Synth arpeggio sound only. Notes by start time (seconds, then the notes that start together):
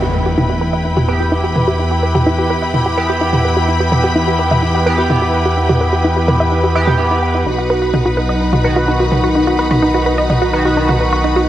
0.02 G4
0.14 B4
0.26 G4
0.38 E4
0.50 G4
0.61 B4
0.73 E5
0.85 E4
0.97 G4
1.08 B4
1.20 G4
1.32 E4
1.44 G4
1.56 B4
1.68 G4
1.79 E4
1.91 G4
2.03 B4
2.15 G4
2.27 E4
2.38 G4
2.50 B4
2.62 E5
2.74 E4
2.86 G4
2.98 B4
3.10 G4
3.21 E4
3.33 G4
3.45 B4
3.57 G4
3.68 E4
3.80 G4
3.92 B4
4.04 G4
4.16 E4
4.28 G4
4.39 B4
4.51 E5
4.63 E4
4.75 G4
4.86 B4
4.98 G4
5.10 E4
5.22 G4
5.34 B4
5.46 G4
5.57 E4
5.69 G4
5.81 B4
5.93 G4
6.05 E4
6.17 G4
6.28 B4
6.40 E5
6.52 E4
6.64 G4
6.75 E5
6.87 G4
6.99 E4
7.11 E4
7.23 G5
7.35 E4
7.46 D#4
7.58 F#4
7.70 B4
7.82 F#4
7.94 D#4
8.06 F#4
8.17 B4
8.29 D#5
8.41 D#4
8.53 F#4
8.64 B4
8.76 F#4
8.88 D#4
9.00 F#4
9.12 B4
9.24 F#4
9.35 D#4
9.47 F#4
9.59 B4
9.71 F#4
9.82 D#4
9.94 F#4
10.06 B4
10.18 D#5
10.30 D#4
10.42 F#4
10.53 B4
10.65 F#4
10.77 D#4
10.89 F#4
11.01 B4
11.13 F#4
11.24 D#4
11.36 F#4